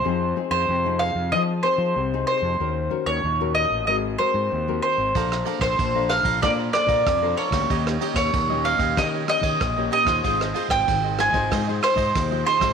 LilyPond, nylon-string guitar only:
\new Staff \with { instrumentName = "Nylon-string guitar" } { \time 4/4 \key ees \major \tempo 4 = 94 << { <c' ees' aes'>16 r16 <c' ees' aes'>8. <c' ees' aes'>8. <c' ees' aes'>16 r16 <c' ees' aes'>8 r16 <c' ees' aes'>8. | <des' ges' bes'>16 r16 <des' ges' bes'>8 r16 <des' ges' bes'>8. <c' ges' bes'>8 <c' ges' bes'>8. <c' ges' bes'>8. | <d' a' c''>16 r16 <d' a' c''>8 r16 <d' a' c''>8. <d' a' c''>8 <d' a' c''>8. <d' a' c''>8 <bes des' g'>16~ | <bes des' g'>8 <bes des' g'>8 r16 <bes des' g'>8. <bes des' g'>8 <bes des' g'>8 r16 <bes des' g'>8 <ees' f' c''>16~ |
<ees' f' c''>8 <ees' f' c''>8. r16 <ees' f' c''>16 <ees' f' c''>8 <ees' f' c''>4 <ees' f' c''>8 <aes c' f'>16 | } \\ { f4 c4 f4 c4 | ees4 bes,4 aes4 ees4 | bes4 f4 bes4 f4 | ees4 bes,4 ees4 bes,4 |
aes4 ees4 aes4 ees4 | } >> }